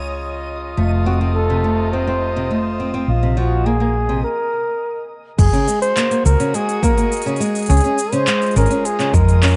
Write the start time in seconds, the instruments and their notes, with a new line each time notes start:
Already playing: fingered electric bass C#2, string quartet C#3 G#3 F4 C#5, synth texture D#5 D#6
0.77 fingered electric bass F1, string quartet C3, nylon-string guitar A3, flugelhorn F4
0.90 string quartet A3
1.06 nylon-string guitar C4, flugelhorn F#4
1.21 nylon-string guitar C4
1.35 flugelhorn A4
1.50 nylon-string guitar C3
1.64 nylon-string guitar A3
1.82 string quartet C5
1.93 nylon-string guitar C4, flugelhorn C5
2.07 nylon-string guitar C4
2.36 nylon-string guitar C3
2.51 nylon-string guitar A3
2.80 nylon-string guitar C4
2.94 nylon-string guitar C4
3.08 fingered electric bass A#1, flugelhorn F4
3.23 nylon-string guitar C3
3.37 nylon-string guitar F3, flugelhorn F#4
3.55 string quartet A#3
3.66 nylon-string guitar A#3, flugelhorn G#4
3.80 nylon-string guitar A#3
4.09 nylon-string guitar C3
4.24 flugelhorn A#4
5.39 fingered electric bass F#1, flugelhorn G#4, synth texture D#5 D#6, kick, open hi-hat, crash, shaker
5.53 nylon-string guitar C#3, open hi-hat, shaker
5.68 nylon-string guitar G#3, shaker
5.80 string quartet F#4, flugelhorn C5, open hi-hat
5.96 nylon-string guitar A#3, clap, open hi-hat, shaker
6.11 nylon-string guitar A#3, string quartet G#4, open hi-hat, shaker
6.26 fingered electric bass C#2, flugelhorn A#4, shaker
6.40 nylon-string guitar C#3, open hi-hat, shaker
6.54 nylon-string guitar G#3, flugelhorn G#4, open hi-hat, shaker
6.69 open hi-hat, shaker
6.83 nylon-string guitar A#3, flugelhorn A#4, kick, shaker
6.97 nylon-string guitar A#3, open hi-hat, shaker
7.12 open hi-hat, shaker
7.17 open hi-hat
7.22 open hi-hat
7.26 nylon-string guitar C#3, shaker
7.36 nylon-string guitar G#3, open hi-hat
7.41 shaker
7.46 open hi-hat
7.55 open hi-hat, shaker
7.59 open hi-hat
7.62 open hi-hat
7.66 fingered electric bass C#2, nylon-string guitar C#4, flugelhorn G#4, open hi-hat
7.70 open hi-hat, shaker
7.73 open hi-hat
7.77 string quartet G#3, open hi-hat
7.81 nylon-string guitar C#4, open hi-hat
7.84 open hi-hat, shaker
7.99 shaker
8.13 nylon-string guitar C#3, flugelhorn C5, open hi-hat, shaker
8.27 nylon-string guitar G#3, clap, open hi-hat, shaker
8.40 string quartet F4, open hi-hat, shaker
8.46 open hi-hat
8.51 open hi-hat
8.56 fingered electric bass G#1, nylon-string guitar C#4, flugelhorn A#4, open hi-hat, shaker
8.61 open hi-hat
8.66 open hi-hat
8.70 nylon-string guitar C#4, open hi-hat, shaker
8.85 flugelhorn G#4, open hi-hat, shaker
8.99 nylon-string guitar C#3, clap, open hi-hat, shaker
9.14 fingered electric bass F2, nylon-string guitar G#3, flugelhorn A#4, kick, shaker
9.28 open hi-hat, shaker
9.43 nylon-string guitar C#4, clap, open hi-hat, shaker
9.47 shaker
9.50 shaker